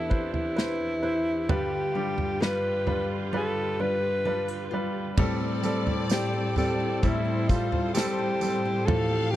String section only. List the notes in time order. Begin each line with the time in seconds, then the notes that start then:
Already playing: E2 E3 D4 G4
1.48 G2 D3 F4
5.18 A2 G3 C4 A4
8.87 A3 C4 G4